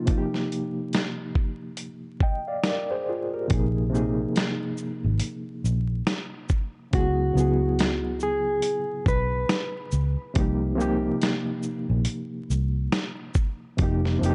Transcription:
0.05 C3 F3 A#3, kick, closed hi-hat
0.10 D#4 F4
0.18 G4
0.34 snare
0.52 closed hi-hat
0.93 snare, closed hi-hat
1.35 kick
1.77 closed hi-hat
2.20 D#5 G5, kick
2.48 D5 F5
2.64 A#4 D5, snare, closed hi-hat
2.91 G#4 C5
3.09 F4 G#4
3.34 G4 A#4
3.48 A#1 C3 F3 A#3, kick, closed hi-hat
3.52 D#4 G#4
3.90 C3 F3 A#3
3.94 D#4 G#4, shaker
4.36 snare, closed hi-hat
4.78 shaker
5.04 G#1
5.19 closed hi-hat
5.64 A#1, shaker
6.07 snare, closed hi-hat
6.49 kick, shaker
6.91 C#2 C#3 F#3 B3 F#4, kick, closed hi-hat
6.96 E4 G#4
7.33 C#2 C#3 F#3 B3
7.38 E4 G#4, shaker
7.79 snare, closed hi-hat
8.20 G#4, shaker
8.62 closed hi-hat
9.06 B1 B4, kick, shaker
9.49 snare, closed hi-hat
9.92 C#2, shaker
10.34 C2 C3 F3 A#3, kick, closed hi-hat
10.39 D#4 G4
10.75 C3 F3 A#3
10.79 D#4 G4, shaker
11.22 snare, closed hi-hat
11.63 shaker
11.90 A#1
12.05 closed hi-hat
12.50 C2, shaker
12.92 snare, closed hi-hat
13.35 kick, shaker
13.77 F1 C3 F3 A#3, kick, closed hi-hat
13.82 D#4 G4
14.05 snare
14.19 F1 C3 F3 A#3
14.23 D#4 G4, closed hi-hat, shaker

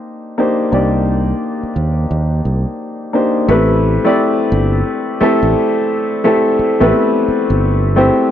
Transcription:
0.38 A#3 D4 D#4 G4 C5
0.72 C2 A#3 D4 D#4 G4 D5
1.63 muted fingered electric bass stroke
1.76 D#2
2.11 D#2
2.45 C2
3.13 A#3 D4 D#4 G4 C5
3.48 A1 A3 C4 E4 G4 B4
4.04 A3 C4 E4 G4 D5
4.52 G1
5.21 A3 C4 E4 G4 A4, muted fingered electric bass stroke
5.43 A1
6.24 A3 C4 E4 G4 A4
6.59 muted fingered electric bass stroke
6.80 A1 A3 B3 E4 G4 B4
6.87 C4
7.28 muted fingered electric bass stroke
7.50 G1
7.96 A3 C4 E4 G4 C5

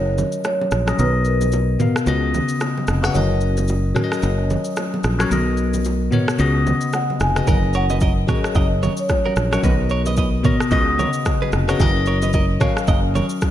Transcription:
Already playing: F#1 F#3 C#4 A#4 C#5 D#5
0.18 low bongo, low conga, shaker
0.32 shaker
0.44 C#5, cross-stick, high bongo, shaker
0.61 low bongo
0.71 A#1, cross-stick, shaker
0.86 F#3 C#4 A#4 D#5, cross-stick, shaker
0.98 B1 B2 B3 A#4 B4 D#5, low conga, shaker
1.25 A#4, shaker
1.41 low bongo, shaker
1.52 high bongo, shaker
1.79 B2 B3 A#4 F5, mid tom, low conga, shaker
1.96 cross-stick, shaker
2.06 C#2 C#3 B3 F#4 D#5, shaker
2.34 low bongo, low conga, shaker
2.48 shaker
2.60 cross-stick, high bongo, shaker
2.78 low bongo
2.87 F1, cross-stick, shaker
3.02 C#3 B3 F#4 F#5, cross-stick, shaker
3.14 F#1 F#3 C#4 A#4 D#5, low conga, shaker
3.41 shaker
3.57 low bongo, shaker
3.68 high bongo, shaker
3.95 F#3 C#4 A#4 C#5, cross-stick, mid tom, low conga, shaker
4.04 D#5
4.12 cross-stick, shaker
4.22 F#1, shaker
4.50 low bongo, low conga, shaker
4.64 shaker
4.76 cross-stick, high bongo, shaker
4.94 low bongo
5.03 A#1, cross-stick, shaker
5.18 F#3 C#4 A#4 C#5, cross-stick, shaker
5.30 B1 B2 B3 A#4 D#5, low conga, shaker
5.57 shaker
5.74 low bongo, shaker
5.84 high bongo, shaker
6.11 B2 B3 A#4 C#5, mid tom, low conga, shaker
6.28 cross-stick, shaker
6.38 C#2 C#3 B3 F#4 D#5, shaker
6.67 low bongo, low conga, shaker
6.81 shaker
6.93 F#5, cross-stick, high bongo, shaker
7.10 low bongo
7.20 F1 G#5, cross-stick, shaker
7.35 C#3 B3 F#4 D#5, cross-stick, shaker
7.46 F#1 F#3 C#4 F#4 A#4 D#5, kick, low conga, shaker
7.73 A#4 C#5 F#5, shaker
7.90 B4 D#5, low bongo, shaker
8.01 A#4 D#5, kick, high bongo, shaker
8.27 F#3 C#4 G#4 A#4 C#5 D#5, kick, cross-stick, mid tom, low conga, shaker
8.35 A#4
8.44 cross-stick, shaker
8.55 F#1 A#4 D#5, kick, shaker
8.83 A#4 C#5, low bongo, low conga, shaker
8.97 C#5, shaker
9.09 C#5, kick, cross-stick, high bongo, shaker
9.26 F#4 A#4, low bongo
9.36 A#1, cross-stick, shaker
9.51 F#3 C#4 A#4 C#5 F#5, cross-stick, shaker
9.62 B1 B2 B3 F#4 A#4 B4 D#5, kick, low conga, shaker
9.89 A#4 C#5, shaker
10.06 B4 D#5, low bongo, shaker
10.17 B4 D#5, kick, high bongo, shaker
10.43 B2 B3 A#4 C#5 D#5, kick, mid tom, low conga, shaker
10.60 cross-stick, shaker
10.70 C#2 C#3 B3 F#4 B4 D#5, kick, shaker
10.99 A#4 C#5, low bongo, low conga, shaker
11.13 shaker
11.25 kick, cross-stick, high bongo, shaker
11.42 G#4 B4, low bongo
11.52 F1, cross-stick, shaker
11.67 C#3 B3 F#4 A#4 C#5 D#5, cross-stick, shaker
11.79 F#1 F#3 C#4 F#4 A#4 D#5, kick, low conga, shaker
12.06 A#4 C#5, shaker
12.22 B4 D#5, low bongo, shaker
12.33 A#4 D#5, kick, high bongo, shaker
12.60 F#3 C#4 A#4 C#5 F5, kick, cross-stick, mid tom, low conga, shaker
12.77 cross-stick, shaker
12.87 F#1 A#4 D#5, kick, shaker
13.15 A#4 C#5, low bongo, low conga, shaker
13.29 shaker
13.41 kick, cross-stick, high bongo, shaker

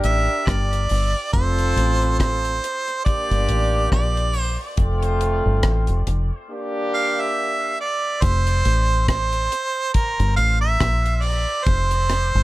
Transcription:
Already playing: D4 G4 A#4
0.04 A1 E5, closed hi-hat
0.47 G1 D5, kick, cross-stick, closed hi-hat
0.73 closed hi-hat
0.89 G1, open hi-hat
1.33 F1 C4 F4 A4 C5, kick, closed hi-hat
1.59 closed hi-hat
1.76 A1, closed hi-hat
2.02 closed hi-hat
2.19 C5, kick, cross-stick, closed hi-hat
2.45 closed hi-hat
2.64 closed hi-hat
2.88 closed hi-hat
3.04 A#3 D4 G4 D5, kick, closed hi-hat
3.31 G1, closed hi-hat
3.49 A1, closed hi-hat
3.92 A#1 D5, kick, cross-stick, closed hi-hat
4.17 closed hi-hat
4.33 open hi-hat
4.41 C5
4.77 F1 A3 C4 F4, kick, closed hi-hat
5.02 closed hi-hat
5.21 closed hi-hat
5.46 G1
5.63 A1, kick, cross-stick, closed hi-hat
5.87 F1, closed hi-hat
6.07 F1, closed hi-hat
6.50 A#3 D4 G4
6.94 F5
7.20 E5
7.81 D5
8.22 F1 C5, kick, closed hi-hat
8.47 closed hi-hat
8.65 A1, closed hi-hat
9.08 C5, kick, cross-stick, closed hi-hat
9.33 closed hi-hat
9.52 closed hi-hat
9.94 A#4, kick, closed hi-hat
10.20 G1, closed hi-hat
10.36 A1 F5, closed hi-hat
10.61 E5
10.80 A#1, kick, cross-stick, closed hi-hat
11.06 closed hi-hat
11.17 E5
11.22 D5, open hi-hat
11.64 F1 C5, kick, closed hi-hat
11.91 closed hi-hat
12.10 cross-stick, closed hi-hat
12.35 G1

